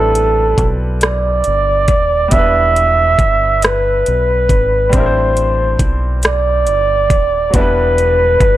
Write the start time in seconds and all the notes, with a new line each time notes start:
Already playing: A1 G3 C4 D4 E4 A4 B4
0.15 closed hi-hat
0.58 B1, kick, closed hi-hat
1.01 D5, cross-stick, closed hi-hat
1.44 G1, closed hi-hat
1.88 D#1, kick, closed hi-hat
2.28 G3 B3, kick, closed hi-hat
2.33 E1 D4 E4 E5
2.38 B4
2.76 closed hi-hat
3.19 G1, kick, closed hi-hat
3.62 B4, cross-stick, closed hi-hat
4.06 B1, closed hi-hat
4.49 G#1, kick, closed hi-hat
4.89 G3 C4, kick, closed hi-hat
4.94 A1 D4 E4 C5
5.00 A#4
5.06 C5
5.37 closed hi-hat
5.79 B1, kick, closed hi-hat
6.23 D5, cross-stick, closed hi-hat
6.67 G1, closed hi-hat
7.10 D#1, kick, closed hi-hat
7.50 F#3 B3, kick, closed hi-hat
7.54 E1 G3 D4 E4 B4
7.60 B4
7.98 closed hi-hat
8.40 G1, kick, closed hi-hat